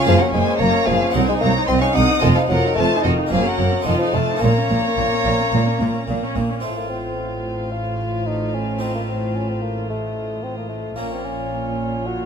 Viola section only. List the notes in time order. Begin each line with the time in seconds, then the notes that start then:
0.07 A#3
0.20 C#4
0.34 A#3
0.47 C#4
0.61 A#3
0.73 C#4
0.87 A#3
1.00 C#4
1.14 C4
1.28 D#4
1.41 C4
1.55 D#4
1.68 C4
1.82 D#4
1.94 C4
2.08 D#4
2.22 F4
2.36 D#4
2.49 F4
2.63 D#4
2.77 F4
2.91 D#4
3.05 F4
3.17 D#4
3.31 A#3
3.45 C#4
3.58 A#3
3.73 C#4
3.86 F4
4.00 D#4
4.15 F4
4.28 D#4
4.41 A#3
4.56 C#4
4.69 A#3
4.83 C#4
4.96 A#3
5.10 C#4
5.24 A#3
5.38 C#4
5.53 A#3
5.66 C#4
5.81 A#3
5.94 C#4
6.07 A#3
6.22 C#4
6.36 A#3
6.50 C#4
6.63 F4
10.98 F4